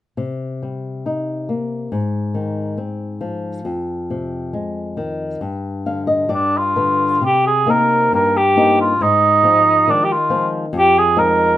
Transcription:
0.17 nylon-string guitar C3
0.63 nylon-string guitar G3
1.06 nylon-string guitar D#4
1.49 nylon-string guitar A#3
1.92 nylon-string guitar G#2
2.34 nylon-string guitar D#3
2.78 nylon-string guitar C4
3.21 nylon-string guitar F3
3.65 nylon-string guitar F2
4.10 nylon-string guitar C3
4.53 nylon-string guitar G#3
4.97 nylon-string guitar D#3
5.41 nylon-string guitar G2
5.86 nylon-string guitar D3 F5
6.07 nylon-string guitar D#5
6.29 nylon-string guitar G2 D5
6.34 cor anglais D4
6.58 cor anglais F4
6.76 nylon-string guitar D3 B4
7.21 nylon-string guitar C3
7.26 cor anglais G4
7.47 cor anglais G#4
7.66 nylon-string guitar A#3 C4 D#4
7.70 cor anglais A#4
8.13 nylon-string guitar G2, cor anglais A#4
8.37 cor anglais G4
8.56 nylon-string guitar A#3 C4 D#4
8.81 cor anglais F4
9.01 nylon-string guitar G#2, cor anglais D#4
9.43 nylon-string guitar F3 G#3 C4
9.88 nylon-string guitar D#3, cor anglais D4
10.04 cor anglais G4
10.12 cor anglais F4
10.30 nylon-string guitar F3 G#3 C4
10.73 nylon-string guitar F2
10.78 cor anglais G4
10.99 cor anglais G#4
11.16 nylon-string guitar F3 G#3 D#4, cor anglais A#4

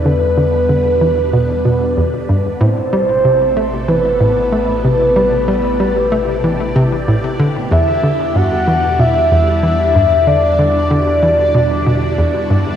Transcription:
Already playing: sub bass E2, string machine B2 D3 G3 B4, synth texture D4 D5
0.05 synth arpeggio sound D3, string machine D4, soft synth lead B4
0.37 synth arpeggio sound D3
0.69 synth arpeggio sound D3
1.01 synth arpeggio sound E3
1.33 synth arpeggio sound B2, soft synth lead B4
1.65 synth arpeggio sound B2
1.97 synth arpeggio sound E2
2.29 synth arpeggio sound G2
2.61 sub bass A1, synth arpeggio sound A2, string machine C3 A3 E4 A4, soft synth lead C5
2.93 synth arpeggio sound G3
3.25 synth arpeggio sound C3
3.57 synth arpeggio sound A3
3.88 synth arpeggio sound E3, soft synth lead B4
4.20 synth arpeggio sound A2
4.53 synth arpeggio sound A3
4.84 synth arpeggio sound C3
5.16 synth arpeggio sound G3, string machine G4, soft synth lead B4
5.48 synth arpeggio sound G3
5.80 synth arpeggio sound G3
6.12 synth arpeggio sound A3
6.44 synth arpeggio sound E3
6.76 synth arpeggio sound C3
7.08 synth arpeggio sound A2
7.40 synth arpeggio sound D3
7.71 synth arpeggio sound E2, sub bass E2, string machine D3 G3, soft synth lead E5
8.03 synth arpeggio sound D3
8.35 synth arpeggio sound G2, soft synth lead F#5
8.68 synth arpeggio sound E3
8.99 synth arpeggio sound B2, soft synth lead E5
9.31 synth arpeggio sound E2
9.63 synth arpeggio sound E3
9.95 synth arpeggio sound G2
10.27 synth arpeggio sound D3, string machine F#4, soft synth lead D5
10.59 synth arpeggio sound D3
10.91 synth arpeggio sound D3
11.23 synth arpeggio sound E3
11.55 synth arpeggio sound B2, soft synth lead D5
11.87 synth arpeggio sound B2
12.18 synth arpeggio sound E2
12.50 synth arpeggio sound G2

